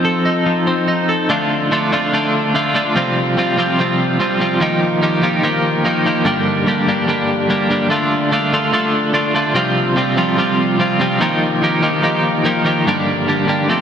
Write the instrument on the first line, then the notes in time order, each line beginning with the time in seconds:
clean electric guitar
Already playing: F3 C4 D#4
0.05 A4
0.25 D#4
0.46 F3
0.67 C4
0.88 D#4
1.09 A4
1.29 D3 A3 D4 F4
1.71 D3 A3 D4 F4
1.92 D3 A3 D4 F4
2.13 D3 A3 D4 F4
2.54 D3 A3 D4 F4
2.75 D3 A3 D4 F4
2.95 C3 F3 G3 C4 F4
3.37 C3 F3 G3 C4 F4
3.57 C3 F3 G3 C4 F4
3.79 C3 F3 G3 C4 F4
4.20 C3 F3 G3 C4 F4
4.40 C3 F3 G3 C4 F4
4.60 D#3 F3 A#3 D#4 G4
5.01 D#3 F3 A#3 D#4 G4
5.22 D#3 F3 A#3 D#4 G4
5.43 D#3 F3 A#3 D#4 G4
5.84 D#3 F3 A#3 D#4 G4
6.05 D#3 F3 A#3 D#4 G4
6.25 G2 D3 G3 A#3 D4 G4
6.66 G2 D3 G3 A#3 D4 G4
6.87 G2 D3 G3 A#3 D4 G4
7.07 G2 D3 G3 A#3 D4 G4
7.49 G2 D3 G3 A#3 D4 G4
7.70 G2 D3 G3 A#3 D4 G4
7.90 D3 A3 D4 F4
8.31 D3 A3 D4 F4
8.53 D3 A3 D4 F4
8.73 D3 A3 D4 F4
9.13 D3 A3 D4 F4
9.34 D3 A3 D4 F4
9.54 C3 F3 G3 C4 F4
9.96 C3 F3 G3 C4 F4
10.17 C3 F3 G3 C4 F4
10.37 C3 F3 G3 C4 F4
10.79 C3 F3 G3 C4 F4
10.99 C3 F3 G3 C4 F4
11.20 D#3 F3 A#3 D#4 G4
11.62 D#3 F3 A#3 D#4 G4
11.82 D#3 F3 A#3 D#4 G4
12.02 D#3 F3 A#3 D#4 G4
12.44 D#3 F3 A#3 D#4 G4
12.64 D#3 F3 A#3 D#4 G4
12.87 G2 D3 G3 A#3 D4 G4
13.27 G2 D3 G3 A#3 D4 G4
13.47 G2 D3 G3 A#3 D4 G4
13.69 F3 A3 C4 G4